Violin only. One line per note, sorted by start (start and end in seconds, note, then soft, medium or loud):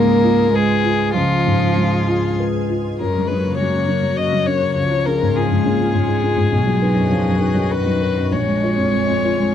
0.00 0.56 A#4 medium
0.55 1.15 G#4 medium
1.16 2.35 F4 medium
3.00 3.29 A#4 soft
3.27 3.57 B4 soft
3.58 4.19 C#5 soft
4.17 4.48 D#5 soft
4.46 4.75 C#5 soft
4.76 5.08 C#5 soft
5.06 5.37 A#4 soft
5.36 7.73 G#4 soft
7.71 8.34 B4 soft
8.33 9.55 C#5 soft